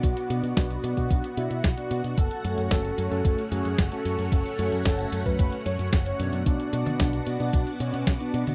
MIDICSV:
0, 0, Header, 1, 6, 480
1, 0, Start_track
1, 0, Key_signature, 2, "minor"
1, 0, Tempo, 535714
1, 31, Time_signature, 4, 2, 24, 8
1, 7660, End_track
2, 0, Start_track
2, 0, Title_t, "Analog synth lead"
2, 0, Program_c, 0, 81
2, 29, Note_on_c, 0, 66, 103
2, 420, Note_off_c, 0, 66, 0
2, 508, Note_on_c, 0, 66, 92
2, 802, Note_off_c, 0, 66, 0
2, 871, Note_on_c, 0, 66, 92
2, 1164, Note_off_c, 0, 66, 0
2, 1229, Note_on_c, 0, 64, 94
2, 1523, Note_off_c, 0, 64, 0
2, 1590, Note_on_c, 0, 66, 94
2, 1883, Note_off_c, 0, 66, 0
2, 1952, Note_on_c, 0, 69, 103
2, 2342, Note_off_c, 0, 69, 0
2, 2432, Note_on_c, 0, 69, 97
2, 2724, Note_off_c, 0, 69, 0
2, 2789, Note_on_c, 0, 69, 92
2, 3082, Note_off_c, 0, 69, 0
2, 3150, Note_on_c, 0, 68, 94
2, 3443, Note_off_c, 0, 68, 0
2, 3510, Note_on_c, 0, 69, 93
2, 3803, Note_off_c, 0, 69, 0
2, 3872, Note_on_c, 0, 69, 104
2, 4261, Note_off_c, 0, 69, 0
2, 4351, Note_on_c, 0, 69, 93
2, 4644, Note_off_c, 0, 69, 0
2, 4710, Note_on_c, 0, 71, 95
2, 5003, Note_off_c, 0, 71, 0
2, 5070, Note_on_c, 0, 73, 92
2, 5363, Note_off_c, 0, 73, 0
2, 5430, Note_on_c, 0, 73, 95
2, 5723, Note_off_c, 0, 73, 0
2, 5791, Note_on_c, 0, 62, 105
2, 6181, Note_off_c, 0, 62, 0
2, 6270, Note_on_c, 0, 62, 96
2, 6563, Note_off_c, 0, 62, 0
2, 6630, Note_on_c, 0, 62, 95
2, 6923, Note_off_c, 0, 62, 0
2, 6991, Note_on_c, 0, 61, 99
2, 7284, Note_off_c, 0, 61, 0
2, 7354, Note_on_c, 0, 62, 97
2, 7645, Note_off_c, 0, 62, 0
2, 7660, End_track
3, 0, Start_track
3, 0, Title_t, "Analog synth pad"
3, 0, Program_c, 1, 89
3, 0, Note_on_c, 1, 59, 77
3, 0, Note_on_c, 1, 66, 75
3, 0, Note_on_c, 1, 78, 86
3, 0, Note_on_c, 1, 86, 71
3, 1915, Note_off_c, 1, 59, 0
3, 1915, Note_off_c, 1, 86, 0
3, 1950, Note_on_c, 1, 73, 72
3, 1951, Note_on_c, 1, 57, 81
3, 1952, Note_on_c, 1, 61, 75
3, 5755, Note_off_c, 1, 57, 0
3, 5755, Note_off_c, 1, 66, 0
3, 5755, Note_off_c, 1, 73, 0
3, 5756, Note_off_c, 1, 61, 0
3, 5790, Note_on_c, 1, 66, 71
3, 5791, Note_on_c, 1, 59, 81
3, 5791, Note_on_c, 1, 86, 73
3, 7660, Note_off_c, 1, 59, 0
3, 7660, Note_off_c, 1, 66, 0
3, 7660, Note_off_c, 1, 78, 0
3, 7660, Note_off_c, 1, 86, 0
3, 7660, End_track
4, 0, Start_track
4, 0, Title_t, "Analog polysynth"
4, 0, Program_c, 2, 90
4, 270, Note_on_c, 2, 47, 98
4, 270, Note_on_c, 2, 59, 88
4, 270, Note_on_c, 2, 62, 90
4, 270, Note_on_c, 2, 74, 102
4, 271, Note_on_c, 2, 66, 89
4, 602, Note_off_c, 2, 47, 0
4, 602, Note_off_c, 2, 59, 0
4, 602, Note_off_c, 2, 62, 0
4, 602, Note_off_c, 2, 66, 0
4, 602, Note_off_c, 2, 74, 0
4, 628, Note_on_c, 2, 47, 80
4, 628, Note_on_c, 2, 59, 73
4, 628, Note_on_c, 2, 62, 75
4, 628, Note_on_c, 2, 66, 75
4, 629, Note_on_c, 2, 74, 91
4, 961, Note_off_c, 2, 47, 0
4, 961, Note_off_c, 2, 59, 0
4, 961, Note_off_c, 2, 62, 0
4, 961, Note_off_c, 2, 66, 0
4, 961, Note_off_c, 2, 74, 0
4, 988, Note_on_c, 2, 47, 81
4, 988, Note_on_c, 2, 59, 74
4, 988, Note_on_c, 2, 66, 73
4, 989, Note_on_c, 2, 62, 74
4, 989, Note_on_c, 2, 74, 87
4, 1138, Note_off_c, 2, 47, 0
4, 1138, Note_off_c, 2, 59, 0
4, 1138, Note_off_c, 2, 62, 0
4, 1138, Note_off_c, 2, 66, 0
4, 1138, Note_off_c, 2, 74, 0
4, 1228, Note_on_c, 2, 66, 74
4, 1228, Note_on_c, 2, 74, 90
4, 1229, Note_on_c, 2, 47, 81
4, 1229, Note_on_c, 2, 59, 76
4, 1229, Note_on_c, 2, 62, 76
4, 1378, Note_off_c, 2, 47, 0
4, 1378, Note_off_c, 2, 59, 0
4, 1378, Note_off_c, 2, 62, 0
4, 1378, Note_off_c, 2, 66, 0
4, 1378, Note_off_c, 2, 74, 0
4, 1589, Note_on_c, 2, 47, 78
4, 1589, Note_on_c, 2, 59, 72
4, 1589, Note_on_c, 2, 74, 85
4, 1590, Note_on_c, 2, 62, 73
4, 1590, Note_on_c, 2, 66, 72
4, 1801, Note_off_c, 2, 47, 0
4, 1801, Note_off_c, 2, 59, 0
4, 1801, Note_off_c, 2, 62, 0
4, 1801, Note_off_c, 2, 66, 0
4, 1801, Note_off_c, 2, 74, 0
4, 1829, Note_on_c, 2, 59, 81
4, 1830, Note_on_c, 2, 62, 75
4, 1830, Note_on_c, 2, 66, 72
4, 1830, Note_on_c, 2, 74, 92
4, 1936, Note_off_c, 2, 59, 0
4, 1936, Note_off_c, 2, 62, 0
4, 1936, Note_off_c, 2, 66, 0
4, 1936, Note_off_c, 2, 74, 0
4, 2191, Note_on_c, 2, 57, 96
4, 2191, Note_on_c, 2, 61, 90
4, 2191, Note_on_c, 2, 66, 87
4, 2191, Note_on_c, 2, 73, 104
4, 2522, Note_off_c, 2, 57, 0
4, 2522, Note_off_c, 2, 61, 0
4, 2522, Note_off_c, 2, 66, 0
4, 2522, Note_off_c, 2, 73, 0
4, 2550, Note_on_c, 2, 57, 82
4, 2550, Note_on_c, 2, 73, 89
4, 2551, Note_on_c, 2, 61, 74
4, 2551, Note_on_c, 2, 66, 72
4, 2882, Note_off_c, 2, 57, 0
4, 2882, Note_off_c, 2, 61, 0
4, 2882, Note_off_c, 2, 66, 0
4, 2882, Note_off_c, 2, 73, 0
4, 2910, Note_on_c, 2, 57, 79
4, 2910, Note_on_c, 2, 61, 74
4, 2910, Note_on_c, 2, 66, 72
4, 2910, Note_on_c, 2, 73, 89
4, 3058, Note_off_c, 2, 57, 0
4, 3058, Note_off_c, 2, 66, 0
4, 3058, Note_off_c, 2, 73, 0
4, 3059, Note_off_c, 2, 61, 0
4, 3150, Note_on_c, 2, 57, 80
4, 3150, Note_on_c, 2, 61, 74
4, 3150, Note_on_c, 2, 66, 75
4, 3150, Note_on_c, 2, 73, 90
4, 3298, Note_off_c, 2, 57, 0
4, 3298, Note_off_c, 2, 61, 0
4, 3298, Note_off_c, 2, 73, 0
4, 3299, Note_off_c, 2, 66, 0
4, 3511, Note_on_c, 2, 57, 77
4, 3511, Note_on_c, 2, 61, 72
4, 3511, Note_on_c, 2, 66, 72
4, 3511, Note_on_c, 2, 73, 83
4, 3722, Note_off_c, 2, 57, 0
4, 3722, Note_off_c, 2, 61, 0
4, 3722, Note_off_c, 2, 66, 0
4, 3722, Note_off_c, 2, 73, 0
4, 3749, Note_on_c, 2, 66, 75
4, 3750, Note_on_c, 2, 57, 81
4, 3750, Note_on_c, 2, 61, 77
4, 3750, Note_on_c, 2, 73, 92
4, 3898, Note_off_c, 2, 61, 0
4, 3898, Note_off_c, 2, 66, 0
4, 3899, Note_off_c, 2, 57, 0
4, 3899, Note_off_c, 2, 73, 0
4, 4110, Note_on_c, 2, 57, 93
4, 4110, Note_on_c, 2, 61, 88
4, 4110, Note_on_c, 2, 66, 86
4, 4110, Note_on_c, 2, 73, 107
4, 4442, Note_off_c, 2, 57, 0
4, 4442, Note_off_c, 2, 61, 0
4, 4442, Note_off_c, 2, 66, 0
4, 4442, Note_off_c, 2, 73, 0
4, 4470, Note_on_c, 2, 66, 74
4, 4470, Note_on_c, 2, 73, 91
4, 4471, Note_on_c, 2, 57, 82
4, 4471, Note_on_c, 2, 61, 74
4, 4802, Note_off_c, 2, 57, 0
4, 4802, Note_off_c, 2, 61, 0
4, 4802, Note_off_c, 2, 66, 0
4, 4802, Note_off_c, 2, 73, 0
4, 4831, Note_on_c, 2, 57, 80
4, 4831, Note_on_c, 2, 61, 75
4, 4831, Note_on_c, 2, 66, 74
4, 4831, Note_on_c, 2, 73, 89
4, 4979, Note_off_c, 2, 57, 0
4, 4979, Note_off_c, 2, 61, 0
4, 4979, Note_off_c, 2, 66, 0
4, 4979, Note_off_c, 2, 73, 0
4, 5190, Note_on_c, 2, 57, 79
4, 5190, Note_on_c, 2, 61, 73
4, 5191, Note_on_c, 2, 66, 72
4, 5191, Note_on_c, 2, 73, 83
4, 5339, Note_off_c, 2, 57, 0
4, 5339, Note_off_c, 2, 61, 0
4, 5339, Note_off_c, 2, 66, 0
4, 5339, Note_off_c, 2, 73, 0
4, 5551, Note_on_c, 2, 47, 82
4, 5551, Note_on_c, 2, 59, 80
4, 5551, Note_on_c, 2, 62, 76
4, 5552, Note_on_c, 2, 66, 77
4, 5552, Note_on_c, 2, 74, 93
4, 6002, Note_off_c, 2, 47, 0
4, 6002, Note_off_c, 2, 59, 0
4, 6002, Note_off_c, 2, 62, 0
4, 6002, Note_off_c, 2, 66, 0
4, 6002, Note_off_c, 2, 74, 0
4, 6031, Note_on_c, 2, 47, 95
4, 6031, Note_on_c, 2, 59, 87
4, 6031, Note_on_c, 2, 62, 88
4, 6031, Note_on_c, 2, 66, 88
4, 6031, Note_on_c, 2, 74, 107
4, 6362, Note_off_c, 2, 47, 0
4, 6362, Note_off_c, 2, 59, 0
4, 6362, Note_off_c, 2, 62, 0
4, 6362, Note_off_c, 2, 66, 0
4, 6362, Note_off_c, 2, 74, 0
4, 6392, Note_on_c, 2, 47, 78
4, 6392, Note_on_c, 2, 59, 76
4, 6392, Note_on_c, 2, 62, 76
4, 6392, Note_on_c, 2, 66, 73
4, 6392, Note_on_c, 2, 74, 89
4, 6723, Note_off_c, 2, 47, 0
4, 6723, Note_off_c, 2, 59, 0
4, 6723, Note_off_c, 2, 62, 0
4, 6723, Note_off_c, 2, 66, 0
4, 6723, Note_off_c, 2, 74, 0
4, 6751, Note_on_c, 2, 47, 82
4, 6751, Note_on_c, 2, 62, 75
4, 6752, Note_on_c, 2, 59, 71
4, 6752, Note_on_c, 2, 66, 75
4, 6752, Note_on_c, 2, 74, 88
4, 6899, Note_off_c, 2, 47, 0
4, 6899, Note_off_c, 2, 59, 0
4, 6899, Note_off_c, 2, 62, 0
4, 6899, Note_off_c, 2, 66, 0
4, 6899, Note_off_c, 2, 74, 0
4, 6992, Note_on_c, 2, 47, 84
4, 6992, Note_on_c, 2, 59, 76
4, 6992, Note_on_c, 2, 62, 77
4, 6992, Note_on_c, 2, 66, 76
4, 6992, Note_on_c, 2, 74, 90
4, 7139, Note_off_c, 2, 47, 0
4, 7139, Note_off_c, 2, 66, 0
4, 7140, Note_off_c, 2, 59, 0
4, 7140, Note_off_c, 2, 62, 0
4, 7140, Note_off_c, 2, 74, 0
4, 7352, Note_on_c, 2, 47, 78
4, 7352, Note_on_c, 2, 66, 68
4, 7353, Note_on_c, 2, 59, 73
4, 7353, Note_on_c, 2, 62, 71
4, 7353, Note_on_c, 2, 74, 83
4, 7563, Note_off_c, 2, 47, 0
4, 7563, Note_off_c, 2, 59, 0
4, 7563, Note_off_c, 2, 62, 0
4, 7563, Note_off_c, 2, 66, 0
4, 7563, Note_off_c, 2, 74, 0
4, 7590, Note_on_c, 2, 47, 83
4, 7591, Note_on_c, 2, 59, 75
4, 7591, Note_on_c, 2, 62, 74
4, 7591, Note_on_c, 2, 66, 75
4, 7591, Note_on_c, 2, 74, 93
4, 7660, Note_off_c, 2, 47, 0
4, 7660, Note_off_c, 2, 59, 0
4, 7660, Note_off_c, 2, 62, 0
4, 7660, Note_off_c, 2, 66, 0
4, 7660, Note_off_c, 2, 74, 0
4, 7660, End_track
5, 0, Start_track
5, 0, Title_t, "Picked electric bass"
5, 0, Program_c, 3, 34
5, 30, Note_on_c, 3, 35, 95
5, 116, Note_off_c, 3, 35, 0
5, 269, Note_on_c, 3, 47, 90
5, 356, Note_off_c, 3, 47, 0
5, 388, Note_on_c, 3, 47, 96
5, 475, Note_off_c, 3, 47, 0
5, 510, Note_on_c, 3, 35, 96
5, 682, Note_off_c, 3, 35, 0
5, 750, Note_on_c, 3, 47, 80
5, 836, Note_off_c, 3, 47, 0
5, 870, Note_on_c, 3, 47, 90
5, 956, Note_off_c, 3, 47, 0
5, 990, Note_on_c, 3, 35, 96
5, 1076, Note_off_c, 3, 35, 0
5, 1230, Note_on_c, 3, 47, 77
5, 1316, Note_off_c, 3, 47, 0
5, 1349, Note_on_c, 3, 47, 79
5, 1436, Note_off_c, 3, 47, 0
5, 1469, Note_on_c, 3, 35, 89
5, 1556, Note_off_c, 3, 35, 0
5, 1711, Note_on_c, 3, 47, 89
5, 1796, Note_off_c, 3, 47, 0
5, 1831, Note_on_c, 3, 47, 80
5, 1917, Note_off_c, 3, 47, 0
5, 1950, Note_on_c, 3, 30, 97
5, 2036, Note_off_c, 3, 30, 0
5, 2191, Note_on_c, 3, 42, 91
5, 2277, Note_off_c, 3, 42, 0
5, 2310, Note_on_c, 3, 42, 94
5, 2396, Note_off_c, 3, 42, 0
5, 2430, Note_on_c, 3, 30, 97
5, 2602, Note_off_c, 3, 30, 0
5, 2670, Note_on_c, 3, 42, 81
5, 2756, Note_off_c, 3, 42, 0
5, 2791, Note_on_c, 3, 42, 94
5, 2877, Note_off_c, 3, 42, 0
5, 2910, Note_on_c, 3, 30, 79
5, 2996, Note_off_c, 3, 30, 0
5, 3151, Note_on_c, 3, 42, 91
5, 3237, Note_off_c, 3, 42, 0
5, 3271, Note_on_c, 3, 42, 81
5, 3357, Note_off_c, 3, 42, 0
5, 3390, Note_on_c, 3, 30, 90
5, 3476, Note_off_c, 3, 30, 0
5, 3632, Note_on_c, 3, 42, 83
5, 3717, Note_off_c, 3, 42, 0
5, 3752, Note_on_c, 3, 42, 88
5, 3837, Note_off_c, 3, 42, 0
5, 3870, Note_on_c, 3, 30, 95
5, 3956, Note_off_c, 3, 30, 0
5, 4112, Note_on_c, 3, 42, 93
5, 4197, Note_off_c, 3, 42, 0
5, 4232, Note_on_c, 3, 42, 95
5, 4317, Note_off_c, 3, 42, 0
5, 4351, Note_on_c, 3, 30, 98
5, 4523, Note_off_c, 3, 30, 0
5, 4590, Note_on_c, 3, 42, 77
5, 4676, Note_off_c, 3, 42, 0
5, 4711, Note_on_c, 3, 42, 94
5, 4797, Note_off_c, 3, 42, 0
5, 4830, Note_on_c, 3, 30, 95
5, 4916, Note_off_c, 3, 30, 0
5, 5070, Note_on_c, 3, 42, 76
5, 5156, Note_off_c, 3, 42, 0
5, 5189, Note_on_c, 3, 42, 83
5, 5276, Note_off_c, 3, 42, 0
5, 5311, Note_on_c, 3, 30, 87
5, 5482, Note_off_c, 3, 30, 0
5, 5551, Note_on_c, 3, 42, 86
5, 5637, Note_off_c, 3, 42, 0
5, 5670, Note_on_c, 3, 42, 83
5, 5756, Note_off_c, 3, 42, 0
5, 5791, Note_on_c, 3, 35, 93
5, 5877, Note_off_c, 3, 35, 0
5, 6030, Note_on_c, 3, 47, 91
5, 6116, Note_off_c, 3, 47, 0
5, 6150, Note_on_c, 3, 47, 97
5, 6236, Note_off_c, 3, 47, 0
5, 6271, Note_on_c, 3, 35, 98
5, 6442, Note_off_c, 3, 35, 0
5, 6512, Note_on_c, 3, 47, 80
5, 6597, Note_off_c, 3, 47, 0
5, 6632, Note_on_c, 3, 47, 92
5, 6717, Note_off_c, 3, 47, 0
5, 6750, Note_on_c, 3, 35, 80
5, 6836, Note_off_c, 3, 35, 0
5, 6990, Note_on_c, 3, 47, 90
5, 7076, Note_off_c, 3, 47, 0
5, 7110, Note_on_c, 3, 47, 81
5, 7196, Note_off_c, 3, 47, 0
5, 7230, Note_on_c, 3, 35, 89
5, 7316, Note_off_c, 3, 35, 0
5, 7471, Note_on_c, 3, 47, 83
5, 7557, Note_off_c, 3, 47, 0
5, 7591, Note_on_c, 3, 47, 87
5, 7660, Note_off_c, 3, 47, 0
5, 7660, End_track
6, 0, Start_track
6, 0, Title_t, "Drums"
6, 30, Note_on_c, 9, 36, 114
6, 32, Note_on_c, 9, 42, 66
6, 120, Note_off_c, 9, 36, 0
6, 121, Note_off_c, 9, 42, 0
6, 151, Note_on_c, 9, 42, 39
6, 241, Note_off_c, 9, 42, 0
6, 271, Note_on_c, 9, 42, 86
6, 360, Note_off_c, 9, 42, 0
6, 391, Note_on_c, 9, 42, 40
6, 480, Note_off_c, 9, 42, 0
6, 510, Note_on_c, 9, 36, 118
6, 511, Note_on_c, 9, 38, 119
6, 511, Note_on_c, 9, 42, 65
6, 600, Note_off_c, 9, 36, 0
6, 600, Note_off_c, 9, 38, 0
6, 600, Note_off_c, 9, 42, 0
6, 631, Note_on_c, 9, 42, 39
6, 720, Note_off_c, 9, 42, 0
6, 751, Note_on_c, 9, 42, 84
6, 840, Note_off_c, 9, 42, 0
6, 870, Note_on_c, 9, 36, 62
6, 870, Note_on_c, 9, 42, 37
6, 960, Note_off_c, 9, 36, 0
6, 960, Note_off_c, 9, 42, 0
6, 990, Note_on_c, 9, 36, 122
6, 991, Note_on_c, 9, 42, 65
6, 1080, Note_off_c, 9, 36, 0
6, 1080, Note_off_c, 9, 42, 0
6, 1111, Note_on_c, 9, 42, 37
6, 1201, Note_off_c, 9, 42, 0
6, 1230, Note_on_c, 9, 42, 85
6, 1320, Note_off_c, 9, 42, 0
6, 1350, Note_on_c, 9, 42, 38
6, 1440, Note_off_c, 9, 42, 0
6, 1470, Note_on_c, 9, 36, 121
6, 1470, Note_on_c, 9, 38, 117
6, 1470, Note_on_c, 9, 42, 64
6, 1560, Note_off_c, 9, 36, 0
6, 1560, Note_off_c, 9, 38, 0
6, 1560, Note_off_c, 9, 42, 0
6, 1590, Note_on_c, 9, 42, 38
6, 1680, Note_off_c, 9, 42, 0
6, 1710, Note_on_c, 9, 42, 88
6, 1799, Note_off_c, 9, 42, 0
6, 1830, Note_on_c, 9, 42, 40
6, 1920, Note_off_c, 9, 42, 0
6, 1950, Note_on_c, 9, 36, 117
6, 1950, Note_on_c, 9, 42, 60
6, 2039, Note_off_c, 9, 42, 0
6, 2040, Note_off_c, 9, 36, 0
6, 2071, Note_on_c, 9, 42, 36
6, 2160, Note_off_c, 9, 42, 0
6, 2191, Note_on_c, 9, 42, 88
6, 2281, Note_off_c, 9, 42, 0
6, 2310, Note_on_c, 9, 42, 38
6, 2400, Note_off_c, 9, 42, 0
6, 2430, Note_on_c, 9, 36, 119
6, 2430, Note_on_c, 9, 38, 125
6, 2430, Note_on_c, 9, 42, 63
6, 2519, Note_off_c, 9, 38, 0
6, 2519, Note_off_c, 9, 42, 0
6, 2520, Note_off_c, 9, 36, 0
6, 2550, Note_on_c, 9, 42, 37
6, 2639, Note_off_c, 9, 42, 0
6, 2671, Note_on_c, 9, 42, 84
6, 2761, Note_off_c, 9, 42, 0
6, 2791, Note_on_c, 9, 42, 37
6, 2880, Note_off_c, 9, 42, 0
6, 2911, Note_on_c, 9, 36, 120
6, 2911, Note_on_c, 9, 42, 62
6, 3000, Note_off_c, 9, 36, 0
6, 3001, Note_off_c, 9, 42, 0
6, 3032, Note_on_c, 9, 42, 37
6, 3121, Note_off_c, 9, 42, 0
6, 3152, Note_on_c, 9, 42, 82
6, 3241, Note_off_c, 9, 42, 0
6, 3272, Note_on_c, 9, 42, 38
6, 3361, Note_off_c, 9, 42, 0
6, 3391, Note_on_c, 9, 36, 120
6, 3391, Note_on_c, 9, 38, 124
6, 3391, Note_on_c, 9, 42, 63
6, 3480, Note_off_c, 9, 36, 0
6, 3481, Note_off_c, 9, 38, 0
6, 3481, Note_off_c, 9, 42, 0
6, 3512, Note_on_c, 9, 42, 38
6, 3601, Note_off_c, 9, 42, 0
6, 3632, Note_on_c, 9, 42, 88
6, 3722, Note_off_c, 9, 42, 0
6, 3751, Note_on_c, 9, 42, 37
6, 3841, Note_off_c, 9, 42, 0
6, 3871, Note_on_c, 9, 36, 114
6, 3871, Note_on_c, 9, 42, 61
6, 3960, Note_off_c, 9, 36, 0
6, 3961, Note_off_c, 9, 42, 0
6, 3993, Note_on_c, 9, 42, 37
6, 4082, Note_off_c, 9, 42, 0
6, 4111, Note_on_c, 9, 42, 86
6, 4201, Note_off_c, 9, 42, 0
6, 4231, Note_on_c, 9, 42, 38
6, 4320, Note_off_c, 9, 42, 0
6, 4350, Note_on_c, 9, 38, 117
6, 4350, Note_on_c, 9, 42, 61
6, 4351, Note_on_c, 9, 36, 120
6, 4439, Note_off_c, 9, 38, 0
6, 4439, Note_off_c, 9, 42, 0
6, 4440, Note_off_c, 9, 36, 0
6, 4470, Note_on_c, 9, 42, 37
6, 4560, Note_off_c, 9, 42, 0
6, 4591, Note_on_c, 9, 42, 84
6, 4680, Note_off_c, 9, 42, 0
6, 4711, Note_on_c, 9, 36, 61
6, 4711, Note_on_c, 9, 42, 36
6, 4801, Note_off_c, 9, 36, 0
6, 4801, Note_off_c, 9, 42, 0
6, 4830, Note_on_c, 9, 42, 60
6, 4831, Note_on_c, 9, 36, 121
6, 4919, Note_off_c, 9, 42, 0
6, 4921, Note_off_c, 9, 36, 0
6, 4950, Note_on_c, 9, 42, 36
6, 5040, Note_off_c, 9, 42, 0
6, 5070, Note_on_c, 9, 42, 85
6, 5159, Note_off_c, 9, 42, 0
6, 5190, Note_on_c, 9, 42, 37
6, 5280, Note_off_c, 9, 42, 0
6, 5311, Note_on_c, 9, 36, 125
6, 5311, Note_on_c, 9, 38, 116
6, 5311, Note_on_c, 9, 42, 61
6, 5400, Note_off_c, 9, 38, 0
6, 5400, Note_off_c, 9, 42, 0
6, 5401, Note_off_c, 9, 36, 0
6, 5432, Note_on_c, 9, 42, 36
6, 5521, Note_off_c, 9, 42, 0
6, 5551, Note_on_c, 9, 42, 86
6, 5641, Note_off_c, 9, 42, 0
6, 5671, Note_on_c, 9, 42, 37
6, 5760, Note_off_c, 9, 42, 0
6, 5791, Note_on_c, 9, 36, 112
6, 5791, Note_on_c, 9, 42, 60
6, 5880, Note_off_c, 9, 36, 0
6, 5880, Note_off_c, 9, 42, 0
6, 5911, Note_on_c, 9, 42, 36
6, 6000, Note_off_c, 9, 42, 0
6, 6030, Note_on_c, 9, 42, 82
6, 6119, Note_off_c, 9, 42, 0
6, 6150, Note_on_c, 9, 42, 38
6, 6150, Note_on_c, 9, 48, 82
6, 6240, Note_off_c, 9, 42, 0
6, 6240, Note_off_c, 9, 48, 0
6, 6270, Note_on_c, 9, 38, 115
6, 6270, Note_on_c, 9, 42, 61
6, 6271, Note_on_c, 9, 36, 116
6, 6359, Note_off_c, 9, 38, 0
6, 6359, Note_off_c, 9, 42, 0
6, 6360, Note_off_c, 9, 36, 0
6, 6389, Note_on_c, 9, 42, 37
6, 6479, Note_off_c, 9, 42, 0
6, 6509, Note_on_c, 9, 42, 85
6, 6599, Note_off_c, 9, 42, 0
6, 6630, Note_on_c, 9, 42, 38
6, 6720, Note_off_c, 9, 42, 0
6, 6750, Note_on_c, 9, 42, 63
6, 6751, Note_on_c, 9, 36, 121
6, 6839, Note_off_c, 9, 42, 0
6, 6840, Note_off_c, 9, 36, 0
6, 6871, Note_on_c, 9, 42, 37
6, 6960, Note_off_c, 9, 42, 0
6, 6991, Note_on_c, 9, 42, 84
6, 7081, Note_off_c, 9, 42, 0
6, 7111, Note_on_c, 9, 42, 37
6, 7201, Note_off_c, 9, 42, 0
6, 7230, Note_on_c, 9, 36, 117
6, 7232, Note_on_c, 9, 38, 118
6, 7232, Note_on_c, 9, 42, 60
6, 7320, Note_off_c, 9, 36, 0
6, 7321, Note_off_c, 9, 38, 0
6, 7321, Note_off_c, 9, 42, 0
6, 7351, Note_on_c, 9, 42, 36
6, 7441, Note_off_c, 9, 42, 0
6, 7472, Note_on_c, 9, 42, 87
6, 7562, Note_off_c, 9, 42, 0
6, 7591, Note_on_c, 9, 42, 37
6, 7591, Note_on_c, 9, 48, 85
6, 7660, Note_off_c, 9, 42, 0
6, 7660, Note_off_c, 9, 48, 0
6, 7660, End_track
0, 0, End_of_file